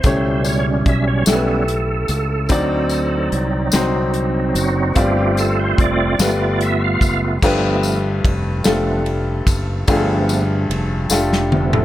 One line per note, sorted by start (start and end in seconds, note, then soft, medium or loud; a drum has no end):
0.00 0.82 C#2 loud
0.00 1.20 A3 medium
0.00 0.47 C5 loud
0.00 closed hi-hat medium
0.00 tambourine soft
0.04 1.24 B2 medium
0.04 1.24 C#3 medium
0.04 1.24 G3 medium
0.04 1.24 C#4 medium
0.04 1.20 E4 medium
0.04 1.21 G4 medium
0.04 1.21 C#5 medium
0.04 kick medium
0.45 closed hi-hat soft
0.45 tambourine soft
0.49 0.66 C#5 medium
0.86 1.24 B1 medium
0.86 1.05 E5 medium
0.86 kick loud
0.86 closed hi-hat soft
1.08 1.26 C#5 medium
1.26 2.05 B1 medium
1.26 1.64 G3 medium
1.26 2.43 A3 medium
1.26 1.64 B3 soft
1.26 1.64 C#4 medium
1.26 2.43 E4 medium
1.26 2.44 G4 medium
1.26 3.29 A4 medium
1.26 1.35 A4 medium
1.26 snare medium
1.26 closed hi-hat medium
1.26 tambourine loud
1.35 2.47 B4 medium
1.68 closed hi-hat medium
2.08 2.47 C#2 medium
2.08 closed hi-hat medium
2.08 tambourine soft
2.49 3.28 D2 medium
2.49 3.69 D3 medium
2.49 4.92 F#3 medium
2.49 3.66 C4 medium
2.49 4.92 C4 medium
2.49 3.66 D#4 medium
2.49 4.93 D#4 medium
2.49 3.67 F#4 medium
2.49 3.67 D5 loud
2.49 kick medium
2.49 closed hi-hat medium
2.49 tambourine soft
2.89 closed hi-hat soft
2.89 tambourine soft
3.32 3.70 C2 medium
3.32 closed hi-hat soft
3.72 4.51 C2 medium
3.72 4.89 C4 medium
3.72 4.89 D#4 medium
3.72 4.90 F#4 medium
3.72 4.90 C5 medium
3.72 snare medium
3.72 closed hi-hat medium
3.72 tambourine loud
4.14 closed hi-hat medium
4.55 4.93 F#1 medium
4.55 4.98 F#4 medium
4.55 closed hi-hat medium
4.55 tambourine medium
4.94 5.74 G1 loud
4.94 6.16 G2 medium
4.94 6.14 A3 medium
4.94 6.12 C4 medium
4.94 6.16 C4 medium
4.94 6.12 F4 medium
4.94 6.16 F4 medium
4.94 6.13 G4 medium
4.94 5.39 G4 medium
4.94 6.13 D5 medium
4.94 kick loud
4.94 closed hi-hat medium
4.94 tambourine soft
5.37 5.59 A4 medium
5.37 closed hi-hat soft
5.37 tambourine medium
5.60 5.80 C5 medium
5.78 6.16 F1 loud
5.78 6.64 D5 loud
5.78 kick loud
5.78 closed hi-hat medium
6.19 6.97 G1 loud
6.19 7.39 G3 medium
6.19 7.38 A3 medium
6.19 7.35 A3 medium
6.19 7.38 B3 medium
6.19 7.38 F4 medium
6.19 7.36 F4 medium
6.19 7.36 G4 medium
6.19 7.37 B4 medium
6.19 snare medium
6.19 closed hi-hat medium
6.19 tambourine medium
6.61 6.82 E5 loud
6.61 closed hi-hat medium
6.84 7.21 F5 medium
7.01 7.39 F#1 medium
7.01 kick medium
7.01 closed hi-hat medium
7.01 tambourine soft
7.42 8.21 G1 loud
7.42 8.62 G2 medium
7.42 7.99 F3 medium
7.42 8.58 A3 medium
7.42 7.99 A3 medium
7.42 7.99 B3 medium
7.42 8.59 D4 medium
7.42 8.59 F4 medium
7.42 8.60 G4 medium
7.42 8.60 B4 loud
7.42 kick loud
7.42 crash medium
7.42 tambourine soft
7.83 ride soft
7.83 tambourine medium
8.24 8.62 F1 loud
8.24 kick loud
8.24 ride medium
8.64 9.44 F1 medium
8.64 9.03 F3 medium
8.64 9.81 A3 medium
8.64 9.02 A3 medium
8.64 9.03 B3 medium
8.64 9.81 D4 medium
8.64 9.82 F4 medium
8.64 9.82 G4 medium
8.64 9.82 A4 medium
8.64 snare loud
8.64 ride medium
8.64 tambourine medium
9.06 ride soft
9.46 9.85 F#1 medium
9.46 kick medium
9.46 ride medium
9.46 tambourine soft
9.88 10.66 G1 loud
9.88 11.08 G2 medium
9.88 10.43 F3 medium
9.88 11.04 A3 loud
9.88 10.44 A3 medium
9.88 10.44 B3 medium
9.88 11.04 D4 medium
9.88 11.05 F4 medium
9.88 11.05 G4 medium
9.88 9.96 G#4 medium
9.88 kick loud
9.88 ride medium
9.88 tambourine soft
9.97 11.09 A4 loud
10.29 ride soft
10.29 tambourine medium
10.70 11.08 F1 medium
10.70 ride medium
11.10 11.85 F1 medium
11.10 11.85 A3 medium
11.10 11.85 D4 medium
11.10 11.53 F4 medium
11.10 11.53 G4 medium
11.10 11.53 A4 medium
11.10 snare soft
11.10 tambourine loud
11.33 snare medium
11.52 11.85 F3 medium
11.52 11.85 A3 medium
11.52 11.85 B3 medium
11.52 high tom medium
11.73 11.85 E4 medium
11.73 11.85 A4 medium
11.73 mid tom medium